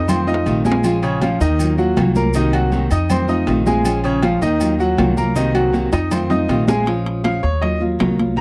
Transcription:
Already playing: F2
0.07 D#3 A3 C4 F4 C5 C6, high conga, low conga, low agogo, maracas
0.27 A3 C4 D#4 F4 D#5 D#6, high conga, maracas
0.34 low timbale
0.46 A#1 C3 D#3 A3 C4 F4, high conga, low agogo, maracas
0.64 G#3 A3 C4 F4 G#4 G#5, high conga, maracas
0.72 low timbale
0.84 F3 G#3 C#4 F4, high conga, low agogo, maracas
1.03 C#3 C#4 C#5, high conga, low agogo, maracas
1.21 F3 G#3 C#4 F4 F5, high conga, low timbale, low agogo, maracas
1.40 D#2 D#3 D#4 D#5, muted nylon-string guitar stroke, high conga, maracas
1.59 D#3 F#3 A#3 F4, high conga, low agogo, maracas
1.77 F#3 A#3 F4 F#4 F#5, high conga, maracas
1.97 C2 D#3 F#3 A#3 F4, high conga, low timbale, low agogo, maracas
2.15 F#3 A#3 F4 A#4 A#5, high conga, maracas
2.34 C3 D#3 A#3 C4 D#4 F#4 D#5, high conga, low agogo, maracas
2.53 F#3 F#4 F#5, high conga, low agogo, maracas
2.72 C3 D#3 A#3 C4 F#4, high conga, low timbale, maracas
2.91 F2 D#4 D#5 D#6, muted nylon-string guitar stroke, high conga, low agogo, maracas
3.09 D#3 A3 C4 F4 C5 C6, high conga, low conga, low agogo, maracas
3.28 A3 C4 D#4 F4 D#5 D#6, high conga, maracas
3.46 A#1 C3 D#3 A3 C4 F4, high conga, low timbale, low agogo, maracas
3.65 G#3 A3 C4 F4 G#4 G#5, high conga, maracas
3.84 F3 G#3 C#4 F4, high conga, low agogo, maracas
4.04 C#3 C#4 C#5, high conga, low agogo, maracas
4.22 F3 G#3 C#4 F4 F5, high conga, low timbale, low agogo, maracas
4.41 D#2 D#3 D#4 D#5, muted nylon-string guitar stroke, high conga, maracas
4.59 D#3 F#3 A#3 F4, high conga, low agogo, maracas
4.78 F#3 A#3 F4 F#4 F#5, high conga, maracas
4.97 C2 D#3 F#3 A#3 F4, high conga, low timbale, low agogo, maracas
5.17 F#3 A#3 A#4 A#5, high conga, maracas
5.35 C3 D#3 A#3 C4 D#4 F#4 D#5, high conga, low agogo, maracas
5.54 F#3 F#4 F#5, high conga, low agogo, maracas
5.73 C3 D#3 A#3 C4 F#4, high conga, low timbale, maracas
5.92 F2 D#4 D#5 D#6, muted nylon-string guitar stroke, high conga, high timbale, low agogo, maracas
6.11 D#3 A3 C4 F4 C5 C6, high conga, low conga, high timbale, low agogo, maracas
6.29 A3 C4 D#4 F4 D#5 D#6, high conga, low conga, low timbale, maracas
6.48 A#1 C3 D#3 A3 C4 F4, low timbale, low agogo, maracas
6.67 G#3 A3 C4 F4 G#4 G#5, high conga, low timbale, maracas
6.86 F3 G#3 C#4 F4, high conga, high timbale
7.06 high conga, high timbale
7.24 F3 G#3 C#4 F4 F5, high conga, high timbale, low timbale
7.43 D#2 C#5, muted nylon-string guitar stroke, high conga
7.61 D#3 F#3 A#3 F4 D#5, high conga, high timbale
7.80 F#3 A#3 F4, high conga
7.99 C2 D#3 F#3 A#3 F4, high conga, high timbale, low timbale
8.18 F#3 A#3 F4, high conga, high timbale
8.36 C3 D#3 A#3 C4 A#5

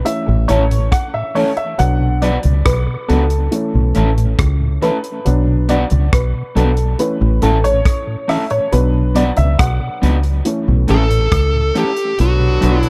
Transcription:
0.05 E3 A3 C#4 E5, closed hi-hat
0.27 A1 A2, muted clean electric guitar stroke
0.48 A1 E3 A3 C#4 E4 A4 C#5, closed hi-hat
0.71 A2, closed hi-hat
0.92 F#5, kick, cross-stick, closed hi-hat
1.14 A2 E5
1.35 E3 A3 C#4 E4 A4 C#5, open hi-hat
1.57 E5, closed hi-hat
1.78 B1 F#3 B3 D4 F#5, closed hi-hat
2.01 B2
2.22 F#3 B3 D4 F#4 B4 D5, closed hi-hat
2.43 C#2 B2, closed hi-hat
2.65 B1 B4, kick, cross-stick, closed hi-hat
2.88 B2
3.08 C#2 F#3 B3 D4 F#4 A4 B4, closed hi-hat
3.30 closed hi-hat
3.51 E3 A3 C#4, closed hi-hat
3.74 B1 A2
3.95 A1 E3 A3 C#4 E4 A4, closed hi-hat
4.17 A2, closed hi-hat
4.39 C#2, kick, cross-stick, closed hi-hat
4.61 A2
4.82 E3 A3 C#4 E4 A4 B4, closed hi-hat
5.04 closed hi-hat
5.25 B1 F#3 B3 D4, closed hi-hat
5.47 B2
5.69 F#3 B3 D4 F#4 B4 D5, closed hi-hat
5.90 C#2 B2, closed hi-hat
6.13 B1 B4, kick, cross-stick, closed hi-hat
6.34 B2
6.55 B1 F#3 B3 D4 F#4 A4 B4, closed hi-hat
6.77 closed hi-hat
6.99 E3 A3 C#4 B4, closed hi-hat
7.21 A1 A2
7.42 A1 E3 A3 C#4 E4 A4, closed hi-hat
7.64 A2 C#5, closed hi-hat
7.85 kick, cross-stick, closed hi-hat
8.07 A2
8.28 E3 A3 C#4 E4 A4 E5, cross-stick, open hi-hat
8.50 A2 C#5, closed hi-hat
8.72 B1 F#3 B3 D4 B4, closed hi-hat
8.94 B2
9.15 F#3 B3 D4 F#4 B4 D5, closed hi-hat
9.37 C#2 B2 E5, closed hi-hat
9.59 B1 F#5, kick, cross-stick, closed hi-hat
9.80 B2
10.02 C#2 F#3 B3 D4 F#4 B4, closed hi-hat
10.23 closed hi-hat
10.45 E3 A3 C#4, closed hi-hat
10.67 B1 A2
10.88 A1 E3 A3 C#4 E4 A4, closed hi-hat
11.10 A2, closed hi-hat
11.32 C#2, kick, cross-stick, closed hi-hat
11.53 A2
11.74 E3 A3 C#4 E4 G4 A4, closed hi-hat
11.97 closed hi-hat
12.19 B1 D3 F#3 B3 D4 F#4, closed hi-hat
12.40 B2
12.61 B1 F#3 B3 D4 F#4 B4, closed hi-hat
12.80 B2 E4, closed hi-hat

